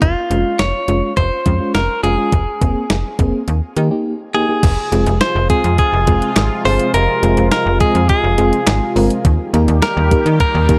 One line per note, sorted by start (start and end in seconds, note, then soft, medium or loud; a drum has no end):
0.02 0.15 F1 loud
0.02 0.61 F4 medium
0.02 kick loud
0.02 closed hi-hat medium
0.30 0.44 F1 loud
0.30 0.53 G#3 medium
0.30 0.53 C#4 medium
0.30 0.53 F4 medium
0.30 closed hi-hat medium
0.59 0.73 F1 medium
0.59 1.13 C#5 loud
0.59 snare loud
0.59 closed hi-hat medium
0.88 1.01 F1 loud
0.88 1.11 G#3 medium
0.88 1.11 C#4 medium
0.88 1.11 F4 medium
0.88 closed hi-hat medium
1.17 1.30 F1 loud
1.17 1.74 C5 loud
1.17 kick medium
1.17 closed hi-hat medium
1.46 1.59 F2 loud
1.46 1.57 G#3 medium
1.46 1.57 C#4 medium
1.46 1.57 F4 medium
1.46 kick medium
1.46 closed hi-hat medium
1.60 1.83 G#3 medium
1.60 1.83 C#4 medium
1.60 1.83 F4 medium
1.75 1.88 F1 loud
1.75 2.03 A#4 medium
1.75 snare loud
1.75 closed hi-hat medium
2.03 2.17 F1 loud
2.03 2.15 G#3 medium
2.03 2.15 C#4 medium
2.03 2.15 F4 medium
2.03 3.73 G#4 medium
2.03 closed hi-hat medium
2.18 2.32 G#3 medium
2.18 2.32 C#4 medium
2.18 2.32 F4 medium
2.32 2.46 F1 loud
2.32 kick loud
2.32 closed hi-hat medium
2.61 2.75 F1 medium
2.61 2.84 A#3 medium
2.61 2.84 C4 medium
2.61 2.84 G#4 medium
2.61 kick medium
2.61 closed hi-hat medium
2.90 3.03 F1 medium
2.90 snare loud
2.90 closed hi-hat medium
3.19 3.32 F1 loud
3.19 3.41 A#3 medium
3.19 3.41 C4 medium
3.19 3.41 G#4 medium
3.19 kick medium
3.19 closed hi-hat medium
3.48 3.61 D#2 loud
3.48 closed hi-hat medium
3.77 3.90 D#3 loud
3.77 3.88 A#3 medium
3.77 3.88 D#4 medium
3.77 3.88 G4 medium
3.77 closed hi-hat medium
3.91 4.14 A#3 medium
3.91 4.14 D#4 medium
3.91 4.14 G4 medium
4.34 4.46 A#3 medium
4.34 4.46 D#4 medium
4.34 4.46 G4 medium
4.34 5.21 G#4 medium
4.49 4.63 A#3 medium
4.49 4.63 D#4 medium
4.49 4.63 G4 medium
4.63 4.76 F1 loud
4.63 9.21 C3 medium
4.63 9.21 F3 medium
4.63 9.21 G#3 medium
4.63 9.21 F4 medium
4.63 kick loud
4.63 closed hi-hat medium
4.63 crash loud
4.92 5.05 F1 loud
4.92 5.15 G#3 medium
4.92 5.15 C4 medium
4.92 5.15 F4 medium
4.92 5.15 G#4 medium
4.92 closed hi-hat medium
5.06 5.20 F1 loud
5.06 closed hi-hat medium
5.21 5.50 C5 loud
5.21 snare loud
5.21 closed hi-hat medium
5.35 5.49 F1 loud
5.50 5.72 G#3 medium
5.50 5.72 C4 medium
5.50 5.72 F4 medium
5.50 5.72 G#4 medium
5.50 5.78 G#4 medium
5.50 kick medium
5.50 closed hi-hat medium
5.64 5.77 F2 loud
5.64 closed hi-hat medium
5.78 6.65 G#4 loud
5.78 kick medium
5.78 closed hi-hat medium
5.93 6.06 F1 loud
6.07 6.21 F1 loud
6.07 6.30 G#3 medium
6.07 6.30 C4 medium
6.07 6.30 F4 medium
6.07 6.30 G#4 medium
6.07 kick medium
6.07 closed hi-hat medium
6.22 closed hi-hat medium
6.36 6.50 G#1 loud
6.36 snare loud
6.36 clap medium
6.36 closed hi-hat medium
6.65 6.78 G1 medium
6.65 6.88 G#3 medium
6.65 6.88 C4 medium
6.65 6.88 F4 medium
6.65 6.88 G#4 medium
6.65 6.94 C5 loud
6.65 open hi-hat medium
6.79 closed hi-hat medium
6.94 7.07 F1 loud
6.94 7.48 A#4 loud
6.94 closed hi-hat medium
7.23 7.36 F1 loud
7.23 7.45 G#3 medium
7.23 7.45 C4 medium
7.23 7.45 F4 medium
7.23 7.45 G#4 medium
7.23 closed hi-hat medium
7.37 7.51 F1 loud
7.37 closed hi-hat medium
7.52 7.79 A#4 medium
7.52 snare loud
7.52 closed hi-hat medium
7.66 7.79 F1 loud
7.80 8.03 G#3 medium
7.80 8.03 C4 medium
7.80 8.03 F4 medium
7.80 8.03 G#4 medium
7.80 8.07 G#4 medium
7.80 kick medium
7.80 closed hi-hat medium
7.95 8.08 F2 loud
7.95 closed hi-hat medium
8.09 8.92 G#4 medium
8.09 kick medium
8.09 closed hi-hat medium
8.24 8.37 F1 loud
8.38 8.51 F1 loud
8.38 8.61 G#3 medium
8.38 8.61 C4 medium
8.38 8.61 F4 medium
8.38 8.61 G#4 medium
8.38 closed hi-hat medium
8.53 closed hi-hat medium
8.67 8.80 G#1 loud
8.67 snare loud
8.67 clap medium
8.67 closed hi-hat medium
8.96 9.09 G1 medium
8.96 9.18 G#3 medium
8.96 9.18 C4 medium
8.96 9.18 F4 medium
8.96 9.18 A#4 loud
8.96 open hi-hat medium
9.10 closed hi-hat medium
9.25 9.38 D#2 loud
9.25 10.79 D#3 medium
9.25 10.79 G3 medium
9.25 10.79 A#3 medium
9.25 10.79 G4 medium
9.25 kick loud
9.25 closed hi-hat medium
9.54 9.67 D#2 loud
9.54 9.76 A#3 medium
9.54 9.76 D#4 medium
9.54 9.76 G4 medium
9.54 9.76 A#4 loud
9.54 closed hi-hat medium
9.68 9.81 D#2 loud
9.68 closed hi-hat medium
9.82 10.39 A#4 loud
9.82 snare loud
9.82 closed hi-hat medium
9.97 10.10 D#2 loud
10.11 10.34 A#3 medium
10.11 10.34 D#4 medium
10.11 10.34 G4 medium
10.11 10.34 A#4 medium
10.11 kick medium
10.11 closed hi-hat medium
10.26 10.39 D#3 loud
10.26 closed hi-hat medium
10.40 10.79 A#4 loud
10.40 kick medium
10.40 closed hi-hat medium
10.55 10.68 D#2 loud
10.69 10.79 D#2 loud
10.69 10.79 A#3 medium
10.69 10.79 D#4 medium
10.69 10.79 G4 medium
10.69 10.79 A#4 medium
10.69 kick medium
10.69 closed hi-hat medium